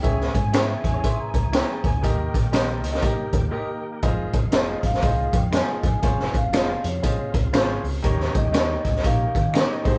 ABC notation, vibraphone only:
X:1
M:4/4
L:1/16
Q:"Swing" 1/4=120
K:Ebmix
V:1 name="Vibraphone"
g a a2 _f2 a2 c' b b4 a2 | g12 z4 | z4 e2 f4 g2 a2 a2- | a2 f4 d4 z6 |
z2 e4 e2 f4 e2 c2 |]